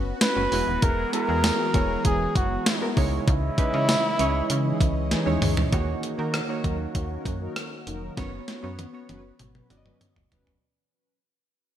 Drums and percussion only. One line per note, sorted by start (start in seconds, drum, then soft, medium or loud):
0.21 snare loud
0.21 closed hi-hat loud
0.21 tambourine medium
0.52 open hi-hat medium
0.82 kick loud
0.82 closed hi-hat medium
1.13 closed hi-hat medium
1.44 snare loud
1.44 closed hi-hat loud
1.44 tambourine medium
1.74 kick loud
1.74 closed hi-hat medium
2.05 kick loud
2.05 closed hi-hat loud
2.36 kick loud
2.36 closed hi-hat medium
2.66 snare loud
2.66 closed hi-hat loud
2.66 tambourine medium
2.97 kick loud
2.97 open hi-hat medium
3.28 kick loud
3.28 closed hi-hat medium
3.58 kick loud
3.58 closed hi-hat medium
3.89 snare loud
3.89 closed hi-hat loud
3.89 tambourine medium
4.19 closed hi-hat medium
4.50 closed hi-hat loud
4.81 kick medium
4.81 closed hi-hat medium
5.11 snare medium
5.11 closed hi-hat loud
5.42 mid tom loud
5.42 open hi-hat medium
5.57 floor tom medium
5.73 kick loud
5.73 closed hi-hat medium
6.03 closed hi-hat medium
6.34 cross-stick loud
6.34 closed hi-hat medium
6.64 kick medium
6.64 closed hi-hat medium
6.95 kick medium
6.95 closed hi-hat medium
7.26 kick medium
7.26 closed hi-hat medium
7.56 cross-stick loud
7.56 closed hi-hat medium
7.87 closed hi-hat medium
8.17 kick loud
8.17 snare soft
8.17 closed hi-hat medium
8.48 snare medium
8.48 closed hi-hat medium
8.79 closed hi-hat medium
8.79 high tom medium
9.09 closed hi-hat medium
9.09 high tom medium
9.39 closed hi-hat medium
9.39 mid tom medium
9.55 mid tom medium
9.70 closed hi-hat medium
9.70 mid tom medium
9.86 mid tom medium
10.01 closed hi-hat medium
10.01 mid tom medium
10.16 floor tom medium
10.32 closed hi-hat medium
10.32 floor tom medium
10.47 floor tom medium